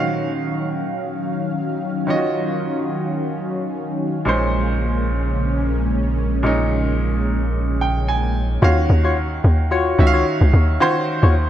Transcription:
0.00 2.03 D#3 medium
0.00 4.22 D#3 medium
0.00 4.22 F#3 medium
0.00 2.04 C#4 medium
0.00 4.22 C#4 medium
0.00 2.04 F#4 medium
0.00 2.08 F5 medium
0.00 4.22 F5 medium
2.07 4.21 D#3 medium
2.07 4.22 C#4 medium
2.07 2.16 F4 medium
2.07 4.23 D#5 medium
2.16 4.26 F#4 medium
4.25 8.58 A#1 medium
4.25 6.40 A#2 medium
4.25 8.58 C#3 medium
4.25 8.58 G#3 medium
4.25 6.40 G#3 medium
4.25 8.58 A#3 medium
4.25 8.58 C#4 medium
4.25 6.41 C#4 medium
4.25 6.42 C5 medium
6.43 8.58 A#2 medium
6.43 8.58 G#3 medium
6.43 8.59 C#4 medium
6.43 8.60 D#4 medium
7.81 8.06 G5 medium
8.08 8.59 G#5 medium
8.62 8.88 D#2 loud
8.62 9.50 D#3 medium
8.62 9.51 C#4 medium
8.62 8.77 F4 loud
8.62 8.77 F#4 medium
8.62 9.51 F#4 medium
8.62 8.78 C#5 loud
8.62 9.51 F5 medium
8.90 9.40 D#2 loud
9.04 9.17 F4 medium
9.04 9.17 F#4 medium
9.04 9.17 C#5 medium
9.44 9.95 D#2 loud
9.71 10.10 F4 loud
9.71 10.10 F#4 medium
9.71 10.10 C#5 loud
9.98 10.24 C#2 medium
9.98 10.65 D#3 medium
9.98 10.65 C#4 medium
9.98 10.66 F#4 medium
9.98 10.07 E5 medium
10.07 10.69 F5 loud
10.13 10.26 F4 medium
10.13 10.26 F#4 medium
10.13 10.26 C#5 medium
10.41 10.52 C#2 loud
10.53 10.79 D#2 loud
10.80 11.50 D#3 medium
10.80 11.50 C#4 medium
10.80 10.95 F4 loud
10.80 10.96 F#4 medium
10.80 11.50 F#4 medium
10.80 11.50 C5 loud
10.80 10.96 C#5 loud
11.23 11.50 D#2 loud
11.23 11.35 F4 medium
11.23 11.35 F#4 medium
11.23 11.35 C#5 medium

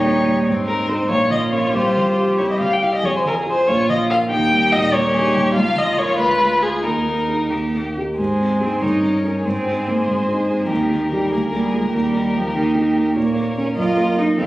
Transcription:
0.00 0.42 D#2 medium
0.00 0.49 A#2 medium
0.00 0.27 G3 soft
0.00 0.44 D#4 medium
0.00 0.45 G4 medium
0.00 0.47 C#5 medium
0.06 0.38 D#4 medium
0.27 0.47 G3 soft
0.46 1.08 G#2 medium
0.46 1.11 C4 medium
0.46 1.10 D#4 medium
0.67 1.01 G#3 soft
0.67 0.90 A#4 medium
0.89 1.08 D#4 soft
0.89 1.10 C5 medium
0.89 1.08 C5 soft
1.09 1.72 A#1 medium
1.09 1.73 A#3 medium
1.09 2.38 F4 medium
1.09 1.31 C#5 medium
1.30 1.65 F3 soft
1.30 1.39 D#5 medium
1.52 1.72 C#4 soft
1.52 1.72 A#4 soft
1.52 1.76 C#5 medium
1.73 2.37 C2 soft
1.73 2.70 G4 medium
1.73 2.37 C5 medium
1.97 2.31 F3 soft
2.18 2.38 F4 soft
2.18 2.38 G4 soft
2.38 3.03 C2 soft
2.38 2.59 E4 soft
2.38 2.43 C#5 medium
2.50 2.60 D#5 soft
2.60 2.96 G3 soft
2.60 2.68 F4 soft
2.60 2.74 F5 medium
2.73 2.84 G5 medium
2.81 3.02 E4 soft
2.81 3.02 G4 soft
2.81 3.03 G4 soft
2.81 2.94 F5 medium
2.95 3.07 D#5 medium
3.03 3.66 F2 medium
3.03 3.68 G#4 soft
3.03 3.16 C#5 medium
3.17 3.21 C5 medium
3.25 3.60 F3 soft
3.25 3.35 A#4 medium
3.46 3.66 F4 soft
3.46 3.66 G#4 soft
3.46 3.69 C5 medium
3.67 4.29 A#1 soft
3.67 4.29 F4 medium
3.67 4.26 F4 medium
3.67 3.89 C#5 medium
3.89 4.23 F3 soft
3.89 3.98 D#5 medium
4.10 4.29 A#4 soft
4.10 4.18 F5 medium
4.29 5.52 D#2 medium
4.29 4.95 D#4 medium
4.29 4.94 G4 medium
4.29 4.74 G5 medium
4.53 4.86 G3 soft
4.72 5.07 A#2 soft
4.72 4.94 D#5 medium
4.93 5.27 G3 soft
4.93 5.55 G4 medium
4.93 5.16 A#4 medium
4.93 5.54 C#5 medium
5.14 5.48 D#4 medium
5.14 5.36 G#4 medium
5.34 5.55 G3 soft
5.34 5.54 G4 medium
5.55 6.17 C#2 medium
5.55 6.81 F4 medium
5.55 6.17 F4 medium
5.55 5.80 F5 medium
5.76 6.10 F3 medium
5.76 6.00 D#5 medium
5.97 6.16 F4 soft
5.97 6.17 A#4 medium
5.97 6.18 C#5 medium
6.17 6.82 D2 medium
6.17 6.85 F4 medium
6.17 6.64 B4 medium
6.40 6.75 G#3 soft
6.61 6.81 F4 soft
6.61 6.81 G#4 soft
6.61 6.85 G#4 medium
6.83 7.49 D#2 medium
6.83 7.52 D#4 soft
6.83 7.85 D#4 medium
6.83 7.52 A#4 medium
7.05 7.42 A#3 soft
7.28 7.49 D#4 soft
7.28 7.49 G#4 soft
7.51 8.16 D#2 medium
7.51 7.97 G4 soft
7.74 8.10 A#3 soft
7.97 8.17 D#4 soft
7.97 8.17 G4 soft
8.17 8.80 G#2 soft
8.17 8.63 G#3 medium
8.17 8.83 G#4 soft
8.17 8.84 C5 soft
8.40 8.74 C4 soft
8.61 8.82 C4 medium
8.61 8.80 D#4 soft
8.61 8.80 G#4 soft
8.81 9.43 G2 soft
8.81 9.23 D#4 soft
8.81 9.44 A#4 soft
8.81 9.46 C#5 soft
9.03 9.36 C#4 soft
9.24 9.33 C#4 soft
9.24 9.43 D#4 soft
9.24 9.43 A#4 soft
9.44 10.06 G#2 soft
9.44 9.89 C4 medium
9.44 10.67 G#4 soft
9.44 10.70 C5 soft
9.67 10.00 D#4 soft
9.87 10.08 A#3 medium
9.87 10.20 C4 soft
10.08 10.68 G#2 soft
10.08 10.66 G#3 soft
10.29 10.62 D#4 soft
10.50 10.70 C4 soft
10.64 10.73 F3 soft
10.69 11.30 D#2 soft
10.69 11.11 D#3 medium
10.69 11.33 G4 soft
10.69 13.13 A#4 soft
10.91 11.24 A#3 soft
11.12 11.31 G3 medium
11.12 11.31 D#4 soft
11.12 11.31 G4 soft
11.31 11.92 D2 soft
11.31 11.40 A#3 medium
11.31 11.93 G#4 soft
11.52 11.75 G3 medium
11.52 11.85 A#3 soft
11.74 11.93 G#3 soft
11.74 11.92 F4 soft
11.74 11.93 G#4 soft
11.93 12.53 D#2 soft
11.93 12.36 G3 medium
11.93 13.14 G4 soft
12.14 12.47 D#4 soft
12.34 12.55 F3 medium
12.34 12.67 A#3 soft
12.55 13.14 D#2 soft
12.55 13.15 D#3 medium
12.75 13.08 D#4 soft
12.96 13.16 A#3 soft
13.16 13.76 A#2 soft
13.16 13.56 A#3 medium
13.16 14.35 A#4 soft
13.16 13.74 C#5 soft
13.36 13.69 A#3 soft
13.57 13.76 C#4 soft
13.57 13.66 C#4 medium
13.57 13.76 A#4 soft
13.76 14.37 F#2 medium
13.76 14.20 F4 medium
13.76 14.36 D#5 soft
13.97 14.31 A#3 soft
14.17 14.36 D#4 soft
14.17 14.37 D#4 medium
14.17 14.37 A#4 soft
14.38 14.47 F2 medium
14.38 14.46 C4 medium
14.38 14.47 A4 soft
14.38 14.47 F5 soft

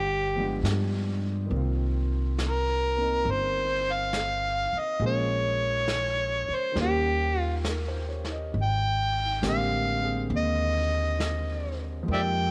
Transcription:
0.00 0.59 G1 medium
0.00 0.64 G4 medium
0.36 1.51 F3 soft
0.36 1.51 G#3 soft
0.36 1.51 B3 soft
0.36 1.52 D4 soft
0.36 1.52 G4 soft
0.63 1.47 G2 medium
0.63 snare soft
0.63 hi-hat pedal medium
1.46 4.98 D#3 soft
1.46 2.95 A#3 soft
1.51 3.22 C2 medium
1.51 2.97 C4 soft
1.51 brush sweep soft
1.56 5.03 F4 soft
2.39 snare soft
2.39 hi-hat pedal soft
2.46 3.32 A#4 medium
2.97 5.00 A#3 soft
2.97 5.01 C4 soft
2.97 5.02 D#4 soft
3.25 4.68 G1 medium
3.25 brush sweep soft
3.31 3.93 C5 medium
3.92 4.81 F5 medium
4.13 snare soft
4.13 hi-hat pedal soft
4.73 muted upright bass stroke soft
4.79 5.03 D#5 medium
5.00 6.44 A#1 medium
5.00 6.76 F3 soft
5.00 6.77 G#3 soft
5.00 6.77 A#3 soft
5.00 6.77 C#4 soft
5.00 6.77 G#4 medium
5.00 brush sweep soft
5.06 6.56 C#5 loud
5.88 snare soft
5.88 hi-hat pedal medium
6.48 muted upright bass stroke soft
6.55 6.79 C5 medium
6.72 8.50 D#2 medium
6.72 8.52 D#3 soft
6.72 8.54 G3 soft
6.76 8.55 A#3 soft
6.76 brush sweep soft
6.76 snare soft
6.81 8.56 C#4 soft
6.81 7.40 G4 medium
6.81 8.58 G4 medium
7.40 7.63 F4 medium
7.65 8.08 A#4 soft
7.65 snare soft
7.65 hi-hat pedal medium
7.88 8.27 C5 soft
8.09 8.36 C#5 soft
8.25 snare soft
8.32 8.63 D#5 soft
8.54 9.38 G#1 medium
8.54 brush sweep soft
8.62 9.43 G5 medium
9.42 10.26 A1 medium
9.42 12.08 D3 medium
9.42 12.04 G#3 soft
9.42 10.00 A#3 soft
9.42 10.01 C4 medium
9.42 12.09 G4 medium
9.42 snare soft
9.42 hi-hat pedal soft
9.48 10.29 F5 medium
10.02 12.07 A#3 soft
10.02 12.08 C4 soft
10.02 12.10 G#4 soft
10.30 12.04 D#2 medium
10.30 brush sweep soft
10.36 11.79 D#5 medium
11.20 snare soft
11.20 hi-hat pedal medium
12.03 12.51 F3 medium
12.03 12.51 G#3 soft
12.08 12.51 F2 medium
12.08 12.51 A#3 soft
12.08 12.51 D#4 soft
12.08 brush sweep soft
12.13 12.51 G4 medium
12.13 12.22 D5 medium
12.13 12.21 E5 medium
12.13 12.51 G5 loud

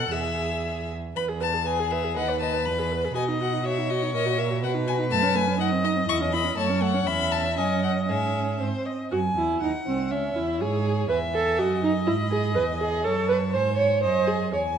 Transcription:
0.00 0.10 B2 medium
0.00 0.13 A4 medium
0.00 0.13 F#5 medium
0.00 0.13 F#6 loud
0.11 0.94 E2 medium
0.11 0.95 G#4 medium
0.11 0.90 E5 medium
0.11 0.90 E6 medium
1.16 2.18 E2 medium
1.16 1.30 B4 medium
1.16 1.24 B5 medium
1.28 1.42 G#4 medium
1.41 1.55 B4 medium
1.41 1.68 A5 loud
1.53 1.65 G#4 medium
1.66 2.18 G#4 medium
1.66 1.80 B4 medium
1.66 1.92 G#5 medium
1.79 1.93 G#4 medium
1.91 2.06 B4 medium
1.91 2.16 E5 medium
2.04 2.16 G#4 medium
2.16 2.67 D#2 medium
2.16 3.15 B4 medium
2.16 2.31 D#5 medium
2.16 2.40 F#5 medium
2.30 2.44 B4 medium
2.41 2.55 D#5 medium
2.41 2.67 A5 loud
2.54 2.66 B4 medium
2.65 3.15 E2 medium
2.65 2.80 B4 medium
2.65 3.14 B5 medium
2.79 2.93 G#4 medium
2.91 3.06 B4 medium
3.05 3.16 G#4 medium
3.15 4.15 B2 medium
3.15 3.30 F#4 medium
3.15 3.67 D#5 medium
3.15 3.23 G#5 medium
3.28 3.43 D#4 medium
3.41 3.55 F#4 medium
3.41 3.65 F#5 medium
3.53 3.65 D#4 medium
3.65 3.80 F#4 medium
3.65 4.63 C#5 medium
3.65 3.91 E5 medium
3.78 3.92 D#4 medium
3.90 4.04 F#4 medium
3.90 4.14 D#5 medium
4.02 4.14 D#4 medium
4.14 4.64 A#2 medium
4.14 4.28 A#4 medium
4.14 4.41 D#5 loud
4.26 4.39 F#4 medium
4.38 4.51 A#4 medium
4.38 4.63 E5 medium
4.50 4.62 F#4 medium
4.62 5.12 B2 medium
4.62 4.75 F#4 medium
4.62 5.58 B4 medium
4.62 4.71 F#5 medium
4.74 4.88 D#4 medium
4.87 5.00 F#4 medium
4.87 4.96 G#5 medium
4.99 5.10 D#4 medium
5.11 6.09 F#2 medium
5.11 5.24 A3 medium
5.11 5.37 A5 loud
5.23 5.37 C#4 medium
5.35 5.49 A3 medium
5.35 5.60 G#5 loud
5.47 5.58 C#4 medium
5.59 5.73 D#4 medium
5.59 6.56 D#5 medium
5.59 5.68 F#5 medium
5.72 5.85 C4 medium
5.84 5.98 D#4 medium
5.84 5.92 D#5 loud
5.97 6.08 C4 medium
6.08 6.57 E2 medium
6.08 6.22 E4 medium
6.08 6.17 C#6 loud
6.21 6.35 C#4 medium
6.33 6.46 E4 medium
6.33 6.57 B5 loud
6.45 6.56 C#4 medium
6.57 7.06 F#2 medium
6.57 6.71 A3 medium
6.57 7.08 C#5 medium
6.57 6.83 A5 medium
6.69 6.83 C#4 medium
6.81 6.96 A3 medium
6.81 7.09 F#5 loud
6.94 7.05 C#4 medium
7.05 7.59 E2 medium
7.05 7.53 C#4 medium
7.05 7.59 E5 medium
7.05 7.34 B5 loud
7.32 7.57 A5 medium
7.57 8.10 F#2 medium
7.57 8.08 C#4 medium
7.57 8.11 D#5 medium
7.57 7.82 G#5 medium
7.84 7.92 F#5 medium
8.08 8.60 G#2 medium
8.08 8.62 C#4 medium
8.08 8.56 G#4 medium
8.08 8.60 E5 medium
8.60 8.68 G#2 medium
8.60 8.91 C4 medium
8.60 8.87 C5 medium
8.86 9.11 D#5 medium
9.11 9.35 F#2 medium
9.11 9.19 F#4 medium
9.11 9.20 F#4 medium
9.11 9.58 G#5 medium
9.37 9.62 E2 medium
9.37 9.61 E4 medium
9.37 9.64 E4 medium
9.62 9.70 D#2 medium
9.62 9.70 D#4 medium
9.62 9.86 D#4 medium
9.62 10.13 F#5 medium
9.86 10.13 C2 medium
9.86 10.13 C4 medium
9.86 10.12 C4 medium
10.11 10.36 C#2 medium
10.11 10.37 C#4 medium
10.11 10.35 C#4 medium
10.11 10.60 E5 medium
10.36 10.62 E2 medium
10.36 10.63 E4 medium
10.36 10.62 E4 medium
10.60 11.10 G#2 medium
10.60 11.10 G#4 medium
10.60 11.08 G#4 medium
10.60 11.09 C#5 medium
11.09 11.61 E2 medium
11.09 11.17 B4 medium
11.09 11.61 E5 medium
11.09 12.09 G#5 medium
11.34 11.60 A4 medium
11.58 12.09 F#2 medium
11.58 11.82 F#4 medium
11.58 13.04 D#5 medium
11.83 11.91 D#4 medium
12.07 12.58 G#2 medium
12.07 12.15 E4 medium
12.07 12.58 B5 medium
12.31 12.55 G#4 medium
12.56 13.07 E2 medium
12.56 12.64 B4 medium
12.56 13.05 G#5 medium
12.79 13.06 G#4 medium
13.04 13.56 F#2 medium
13.04 13.28 A4 medium
13.04 13.56 C#5 medium
13.04 13.56 A5 medium
13.29 13.37 B4 medium
13.53 14.05 G#2 medium
13.53 13.77 C5 medium
13.53 14.03 C5 medium
13.53 14.03 G#5 medium
13.77 14.02 C#5 medium
14.03 14.55 F#2 medium
14.03 14.29 C5 medium
14.03 14.53 D#5 medium
14.03 14.52 G#5 medium
14.28 14.52 G#4 medium
14.53 14.78 E2 medium
14.53 14.61 C#5 medium
14.53 14.78 G#5 soft
14.53 14.78 G#5 medium

